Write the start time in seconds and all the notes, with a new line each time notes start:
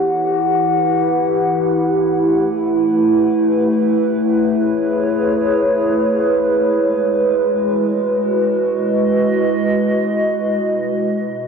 Already playing: E3 E4 G4 B4 F#5
2.08 A3
3.91 G#4
3.97 C#5
6.38 G#3
7.15 F#4
8.28 D#5
10.64 B2
11.27 D#4